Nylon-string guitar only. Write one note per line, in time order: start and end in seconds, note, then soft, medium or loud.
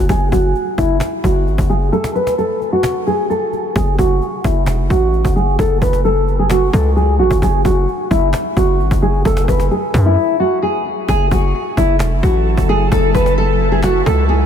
0.09 0.27 G#4 loud
0.32 0.75 F#4 medium
0.78 0.95 E4 medium
1.24 1.67 F#4 medium
1.70 1.87 G#4 medium
1.92 2.10 A4 loud
2.15 2.33 B4 medium
2.38 2.71 A4 medium
2.72 3.05 F#4 medium
3.07 3.24 G#4 medium
3.30 3.73 A4 medium
3.76 3.93 G#4 medium
3.99 4.42 F#4 medium
4.44 4.62 E4 medium
4.90 5.33 F#4 medium
5.36 5.53 G#4 medium
5.59 5.76 A4 medium
5.82 5.99 B4 medium
6.05 6.37 A4 medium
6.39 6.48 G#4 medium
6.51 6.68 F#4 loud
6.73 6.91 A4 medium
6.96 7.14 G#4 medium
7.19 7.37 F#4 medium
7.42 7.59 G#4 loud
7.65 8.08 F#4 medium
8.11 8.28 E4 medium
8.57 9.00 F#4 medium
9.02 9.20 G#4 medium
9.25 9.42 A4 loud
9.48 9.66 B4 medium
9.71 10.03 G#4 medium
10.05 10.38 E4 medium
10.40 10.57 F#4 medium
10.62 11.06 G#4 medium
11.08 11.26 G#4 loud
11.31 11.74 F#4 medium
11.77 11.95 E4 medium
12.23 12.66 F#4 medium
12.69 12.86 G#4 medium
12.92 13.09 A4 loud
13.15 13.32 B4 medium
13.38 13.70 A4 medium
13.72 13.80 G#4 medium
13.83 14.01 F#4 loud
14.06 14.24 A4 medium
14.29 14.46 G#4 medium